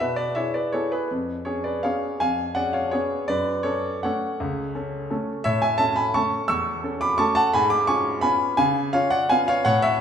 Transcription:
0.00 B2 B4 E5
0.16 B4 D5
0.35 E4 G#4 C#5 E5
0.54 B4 D5
0.72 B3 E4 G#4 A4 C#5
0.92 G#4 B4
1.11 F2
1.45 C#4 G#4 C#5
1.64 B4 D5
1.83 B3 C#4 G#4 C#5 F5
2.20 F2 F5 G#5
2.55 C#4 G#4 D5 F#5
2.73 C#5 F5
2.91 B3 C#4 G#4 C#5
3.28 F#2 B4 D5
3.63 C#4 A4 C#5
4.03 A3 C#4 A4 C#5 F#5
4.40 C#2
4.75 C#4 A4
5.10 A3 C#4 A4
5.44 A2 C#5 E5
5.62 E5 G#5
5.78 C#4 A4 E5 A5
5.96 G#5 B5
6.14 A3 C#4 A4 A5 C#6
6.48 E2 C#6 E6
6.84 C#4 A4
7.01 B5 D6
7.18 A3 C#4 A4 A5 C#6
7.35 F#5 A5
7.53 G#2 G#5 B5
7.70 B5 D6
7.87 C#4 F4 G#5 C#6
8.21 B3 C#4 F4 G#5 B5
8.57 C#3 F5 G#5
8.93 C#4 F4 C#5 F5
9.10 D5 F#5
9.29 B3 C#4 F4 F5 G#5
9.48 C#5 F5
9.65 A2 C#5 F#5
9.82 C#5 E5

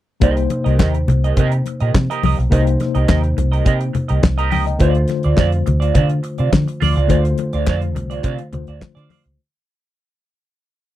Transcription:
0.20 C2 C3 A#3 D#4 G4 A#4 C5 D#5, kick, closed hi-hat
0.37 muted clean electric guitar stroke, closed hi-hat
0.50 muted clean electric guitar stroke, closed hi-hat, muted conga
0.64 C2 G4 A#4 D#5, closed hi-hat
0.79 D#2 G4 A#4 D#5, kick, snare, clap, high conga
0.94 muted clean electric guitar stroke, closed hi-hat
1.08 C2, muted clean electric guitar stroke, closed hi-hat, muted conga, low conga
1.24 G4 A#4 D#5, closed hi-hat
1.37 C3 G4 A#4 D#5, kick, closed hi-hat, low conga
1.52 muted clean electric guitar stroke, closed hi-hat
1.66 muted clean electric guitar stroke, closed hi-hat, muted conga
1.80 A#2 G4 A#4 D#5, closed hi-hat
1.94 C3, kick, snare, clap, high conga
2.10 G4 A#4 D#5, closed hi-hat
2.23 C2 G4 A#4 D#5, open hi-hat, high conga
2.39 B1, muted clean electric guitar stroke, closed hi-hat
2.50 C2 C3 A#3 D#4 G4 A#4 C5 D#5, kick, closed hi-hat
2.66 muted clean electric guitar stroke, closed hi-hat
2.80 muted clean electric guitar stroke, snare, closed hi-hat, muted conga
2.95 C2 G4 A#4 D#5, closed hi-hat
3.08 D#2 G4 A#4 D#5, kick, snare, clap, high conga
3.23 muted clean electric guitar stroke, closed hi-hat
3.37 C2, muted clean electric guitar stroke, closed hi-hat, muted conga, low conga
3.52 G4 A#4 D#5, closed hi-hat
3.65 C3 G4 A#4 D#5, kick, closed hi-hat
3.81 muted clean electric guitar stroke, closed hi-hat
3.93 muted clean electric guitar stroke, closed hi-hat, low conga
4.08 C2 G4 A#4 D#5, closed hi-hat
4.22 C2, muted clean electric guitar stroke, kick, snare, clap, high conga
4.38 G4 A#4 D#5 A#5, closed hi-hat
4.50 C#2 G4 A#4 D#5 G5, open hi-hat, high conga
4.66 D#5, muted clean electric guitar stroke, closed hi-hat
4.79 D2 D3 A3 F4 C5 D5, kick, closed hi-hat
4.95 muted clean electric guitar stroke, closed hi-hat
5.08 muted clean electric guitar stroke, snare, closed hi-hat, muted conga
5.23 D2 F4 C5 D5, closed hi-hat
5.37 F2 F4 C5 D5, kick, snare, clap, high conga
5.52 muted clean electric guitar stroke, closed hi-hat
5.66 D2, muted clean electric guitar stroke, closed hi-hat, muted conga, low conga
5.80 F4 C5 D5, closed hi-hat
5.94 D3 F4 C5 D5, kick, closed hi-hat, low conga
6.09 closed hi-hat
6.23 muted clean electric guitar stroke, closed hi-hat
6.38 C3 F4 C5 D5, closed hi-hat
6.51 D3, muted clean electric guitar stroke, kick, snare, clap, high conga
6.68 muted clean electric guitar stroke, closed hi-hat
6.80 D2 F4 C5 D5, open hi-hat, high conga
6.96 C#2 F4 C5 D5, closed hi-hat
7.08 D2 D3 A3 F4 C5 D5, kick, closed hi-hat
7.25 muted clean electric guitar stroke, closed hi-hat
7.38 muted clean electric guitar stroke, closed hi-hat, muted conga
7.53 D2 F4 C5 D5, closed hi-hat
7.67 F2 F4 C5 D5, kick, snare, clap, high conga
7.82 muted clean electric guitar stroke, closed hi-hat
7.95 C2, muted clean electric guitar stroke, closed hi-hat, muted conga, low conga
8.10 F4 C5 D5, closed hi-hat
8.23 C3 F4 C5 D5, kick, closed hi-hat
8.38 muted clean electric guitar stroke, closed hi-hat
8.53 D2 D3 A3 F4 C5, muted clean electric guitar stroke, closed hi-hat, muted conga, low conga
8.67 D2 F4 C5 D5, closed hi-hat
8.81 kick, snare, clap, high conga
8.95 D3 F4 C5 D5, closed hi-hat
9.09 F4 C5 D5, open hi-hat, high conga
9.26 C#2

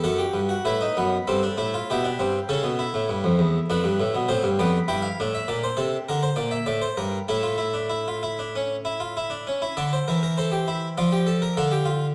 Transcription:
0.04 F#2 F#4 A4
0.18 G4
0.33 G2
0.49 F#4
0.65 A2 E4 B4
0.81 D#4
0.97 F#2 B3
1.28 G2 C4 A4
1.43 D4
1.57 A2 E4
1.74 F4
1.90 B2 E4 G4
2.04 D4
2.19 G2 C4
2.49 C#3 C#4 A4
2.63 B2
2.79 E4
2.94 A2
3.09 G2
3.24 F2
3.39 E2
3.70 F2 D4 B4
3.84 G2
4.00 A2
4.15 B2
4.29 A2 C4 C5
4.43 G2
4.59 F2 B3 D5
4.88 G2 E4 G5
5.02 F5
5.20 A2 D4
5.35 E5
5.48 A#2 D5
5.64 C5
5.77 C3 A4
6.09 D3 A#4
6.23 C5
6.36 A#2 D5
6.51 E5
6.66 A2 D5
6.82 C5
6.97 G2 A#4
7.28 A2 E4 A4
7.43 F4
7.58 E4
7.74 D4
7.90 E4
8.08 F4
8.23 E4
8.39 D4
8.56 C#4
8.85 E4
9.00 F4
9.17 E4
9.30 D4
9.47 C#4
9.62 E4
9.77 D3 A4 D5
9.93 C5
10.08 E3 A#4
10.23 A#4
10.38 A4 C5
10.52 G4
10.68 E4
10.98 F3 F4 D5
11.12 G4
11.27 A4
11.42 A#4
11.57 D3 A4 F5
11.72 G4
11.85 F4

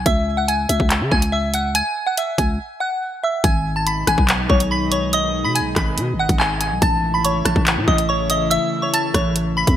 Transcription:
0.06 C#2 E5 E6, kick, closed hi-hat
0.37 F#5 F#6
0.48 G#5 G#6, closed hi-hat
0.69 C#2 E5 E6, closed hi-hat
0.80 C#2, kick
0.90 clap, closed hi-hat
1.01 C#3
1.11 C#2 G#5 G#6, kick
1.22 closed hi-hat
1.32 E5 E6
1.54 F#5 F#6, closed hi-hat
1.75 G#5 G#6, closed hi-hat
2.07 F#5 F#6
2.17 E5 E6, closed hi-hat
2.38 C#2 G#5 G#6, kick, closed hi-hat
2.80 F#5 F#6
3.24 E5 E6
3.44 G#1 B2 D#3 G#3 D#4 G#5 G#6, kick, closed hi-hat
3.76 A5 A6
3.87 B5 B6, closed hi-hat
4.07 G#1 G#5 G#6, cross-stick, closed hi-hat
4.18 B1, kick
4.28 clap, closed hi-hat
4.49 B1 C#5 C#6, kick
4.60 closed hi-hat
4.71 B5 B6
4.92 C#5 C#6, closed hi-hat
5.13 D#5 D#6, closed hi-hat
5.44 B2 B5 B6
5.55 G#5 G#6, closed hi-hat
5.60 B1
5.76 G#1 B5 B6, kick, cross-stick, clap, closed hi-hat
5.97 B2, closed hi-hat
6.13 G#1
6.19 F#5 F#6
6.29 G#1, kick, closed hi-hat
6.39 G#5 G#6, clap
6.61 G#5 G#6, closed hi-hat
6.71 B1
6.82 A1 C#3 E3 A3 E4 A5 A6, kick, closed hi-hat
7.14 B5 B6
7.25 C#5 C#6, closed hi-hat
7.45 A1 A5 A6, cross-stick, closed hi-hat
7.56 A1, kick
7.66 clap, closed hi-hat
7.77 A2
7.88 A1 D#5 D#6, kick
7.98 closed hi-hat
8.09 C#5 C#6
8.30 D#5 D#6, closed hi-hat
8.51 E5 E6, closed hi-hat
8.82 C#5 C#6
8.93 A5 A6, closed hi-hat
9.14 A1 C#5 C#6, kick, cross-stick, closed hi-hat
9.36 closed hi-hat
9.57 B5 B6
9.67 E2, kick, closed hi-hat

